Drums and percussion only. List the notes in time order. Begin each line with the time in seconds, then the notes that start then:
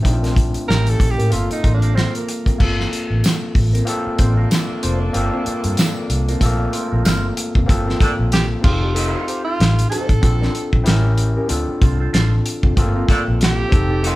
0.05 kick, closed hi-hat
0.24 snare, closed hi-hat
0.36 kick, closed hi-hat
0.54 closed hi-hat
0.70 snare
0.87 closed hi-hat
1.00 kick, closed hi-hat
1.20 closed hi-hat
1.32 closed hi-hat
1.51 closed hi-hat
1.64 kick, closed hi-hat
1.82 closed hi-hat
1.98 snare
2.15 closed hi-hat
2.29 closed hi-hat
2.46 kick, closed hi-hat
2.60 kick, crash
2.80 snare
2.93 closed hi-hat
3.24 snare, closed hi-hat, tambourine
3.55 kick, open hi-hat
3.75 closed hi-hat
3.87 closed hi-hat
4.19 kick, closed hi-hat
4.51 snare, closed hi-hat, tambourine
4.83 closed hi-hat
5.14 closed hi-hat
5.46 closed hi-hat
5.64 closed hi-hat
5.77 snare, closed hi-hat, tambourine
6.10 closed hi-hat
6.29 closed hi-hat
6.41 kick, closed hi-hat
6.73 closed hi-hat
7.05 snare, closed hi-hat, tambourine
7.37 closed hi-hat
7.55 kick
7.69 kick, closed hi-hat
7.89 snare
8.01 kick, closed hi-hat
8.32 snare, closed hi-hat
8.64 kick, crash
8.96 closed hi-hat
9.28 closed hi-hat
9.60 snare, closed hi-hat
9.79 closed hi-hat
9.92 closed hi-hat
10.09 kick, closed hi-hat
10.23 kick, closed hi-hat
10.43 snare
10.55 closed hi-hat
10.73 kick
10.86 snare, closed hi-hat
11.18 closed hi-hat
11.49 closed hi-hat
11.82 kick, closed hi-hat
12.14 snare, closed hi-hat
12.46 closed hi-hat
12.63 kick
12.77 kick, closed hi-hat
13.09 kick, closed hi-hat
13.41 snare, closed hi-hat
13.72 kick, closed hi-hat
14.04 closed hi-hat